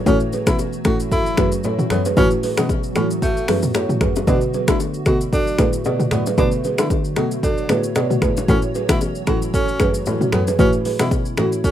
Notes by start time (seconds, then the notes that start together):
Already playing: F#3 A3 F#4 C#5
0.06 A2 E3 A3 C#4 F#4 A4 C#5, kick, low conga, shaker
0.20 shaker
0.33 G#4 B4, low bongo, shaker
0.47 B2 E3 A3 C#4 E4 F#4, finger snap, kick, cross-stick, low bongo, shaker
0.59 high bongo, shaker
0.73 shaker
0.85 A2 E3 A3 C#4 F#4 A4, finger snap, kick, cross-stick, shaker
1.00 shaker
1.12 E4 F#4 A4, kick, low conga, shaker
1.26 shaker
1.37 F#2 E3 A3 C#4 F#4 G#4 B4, finger snap, kick, cross-stick, high bongo, low bongo, shaker
1.52 shaker
1.64 A2 A4 C#5, high bongo, shaker
1.78 E3 A3 C#4 F#4, mid tom, shaker
1.90 F#2 B3 A4 C#5, finger snap, cross-stick, low conga, shaker
2.05 G#4 B4, low bongo, shaker
2.16 A2 E3 A3 B3 C#4 F#4 B4, kick, low conga, shaker
2.30 shaker
2.43 G#4 B4, open hi-hat, low bongo, shaker
2.57 B2 E3 A3 B3 C#4 F#4, finger snap, cross-stick, low bongo, shaker
2.69 kick, high bongo, shaker
2.83 shaker
2.95 A2 E3 A3 C#4 F#4 A4, finger snap, cross-stick, shaker
3.11 shaker
3.22 A3 F#4 A4, kick, low conga, shaker
3.37 shaker
3.48 F#2 E3 A3 C#4 F#4 G#4 B4, finger snap, cross-stick, open hi-hat, high bongo, low bongo, shaker
3.63 mid tom, shaker
3.74 A2 A4 C#5, finger snap, cross-stick, high bongo, shaker
3.89 E3 A3 C#4 F#4, mid tom, shaker
4.01 F#2 G#4 B4, finger snap, kick, cross-stick, low conga, shaker
4.16 high bongo, low bongo, shaker
4.27 B2 D3 A3 B3 D4 F#4 B4, kick, low conga, shaker
4.41 shaker
4.54 G#4 B4, low bongo, shaker
4.68 D3 A3 B3 E4 F#4, finger snap, kick, cross-stick, low bongo, shaker
4.80 high bongo, shaker
4.94 shaker
5.06 B2 D3 A3 B3 F#4 A4, finger snap, kick, cross-stick, shaker
5.21 shaker
5.33 D4 F#4 A4, kick, low conga, shaker
5.47 shaker
5.58 A2 D3 A3 B3 F#4 G#4 B4, finger snap, kick, cross-stick, high bongo, low bongo, shaker
5.73 shaker
5.85 B2 B4 D5, high bongo, shaker
5.99 D3 A3 B3 F#4, mid tom, shaker
6.11 A2 B3 B4 D5, finger snap, cross-stick, low conga, shaker
6.26 G#4 B4, low bongo, shaker
6.37 B2 D3 A3 B3 D4 F#4 B4 C#5, kick, low conga, shaker
6.51 shaker
6.64 G#4 B4, low bongo, shaker
6.78 D3 A3 B3 E4 F#4, finger snap, cross-stick, low bongo, shaker
6.90 kick, high bongo, shaker
7.04 shaker
7.16 B2 D3 A3 B3 F#4 A4, finger snap, cross-stick, shaker
7.31 shaker
7.43 D4 F#4 A4, kick, low conga, shaker
7.58 shaker
7.69 A2 D3 A3 B3 F#4 G#4 B4, finger snap, cross-stick, high bongo, low bongo, shaker
7.84 shaker
7.95 B2 B4 D5, finger snap, cross-stick, high bongo, shaker
8.10 D3 A3 B3 F#4, mid tom, shaker
8.22 A2 G#4 B4, finger snap, kick, cross-stick, low conga, shaker
8.37 low bongo, shaker
8.48 A2 E3 F#3 A3 C#4 F#4 A4 C#5, kick, low conga, shaker
8.62 shaker
8.75 G#4 B4, low bongo, shaker
8.89 B2 E3 A3 C#4 E4 F#4, finger snap, kick, cross-stick, low bongo, shaker
9.01 high bongo, shaker
9.15 shaker
9.27 A2 E3 A3 C#4 F#4 A4, finger snap, kick, cross-stick, shaker
9.42 shaker
9.54 C#4 F#4 A4, kick, low conga, shaker
9.68 shaker
9.80 F#2 E3 A3 C#4 F#4 G#4 B4, finger snap, kick, cross-stick, high bongo, low bongo, shaker
9.94 shaker
10.06 A2 A4 C#5, high bongo, shaker
10.20 E3 A3 C#4 F#4, mid tom, shaker
10.32 F#2 B3 A4 C#5, finger snap, cross-stick, low conga, shaker
10.47 G#4 B4, low bongo, shaker
10.59 A2 E3 A3 C#4 E4 F#4 B4, kick, low conga, shaker
10.73 shaker
10.85 G#4 B4, open hi-hat, low bongo, shaker
10.99 B2 E3 A3 C#4 E4 F#4, finger snap, cross-stick, low bongo, shaker
11.11 kick, high bongo, shaker
11.25 shaker
11.37 A2 E3 A3 C#4 F#4 A4, finger snap, cross-stick, shaker
11.52 shaker
11.64 C#4 F#4 A4, kick, low conga, shaker